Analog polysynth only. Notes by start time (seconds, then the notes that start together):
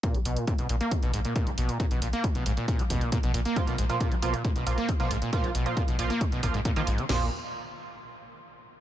3.56 F3 A#3 F4
3.90 F3 A#3 F4
4.22 F3 A#3 F4
4.67 F3 A#3 F4
5.00 F3 A#3 F4
5.33 F3 A#3 F4
5.66 F3 A#3 F4
5.99 F3 A#3 F4
6.43 F3 A#3 F4
6.76 F3 A#3 F4
7.09 F3 A#3 F4